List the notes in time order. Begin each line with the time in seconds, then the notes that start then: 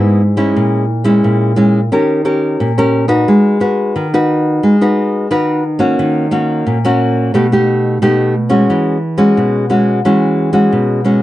Already playing: G#2 G#3 B3 E4
0.37 G#3 C#4 E4
0.56 A#2
1.04 G#3 C#4 E4
1.24 A#2
1.56 G#3 C#4 E4
1.92 D#3 C#4 G4 A#4
2.25 C#4 G4 A#4
2.60 A#2
2.78 C#4 G4 A#4
3.08 D#4 F#4 B4
3.28 G#3
3.60 D#4 F#4 B4
3.96 D#3
4.14 D#4 F#4 B4
4.63 G#3
4.81 D#4 F#4 B4
5.31 D#3 D#4 F#4 B4
5.79 A#3 C#4 F#4
5.99 D#3
6.31 A#3 C#4 F#4
6.67 A#2
6.85 A#3 C#4 F#4
7.34 B2 A3 D#4 G4
7.52 A3 D#4 G4
8.02 B2 A3 D#4 G4
8.49 G#3 C#4 F#4
8.70 E3
9.18 G#3 C#4 F#4
9.37 B2
9.70 G#3 C#4 F#4
10.05 E3 G#3 C#4 F#4
10.53 G#3 C#4 F#4
10.72 B2
11.04 G#3 C#4 F#4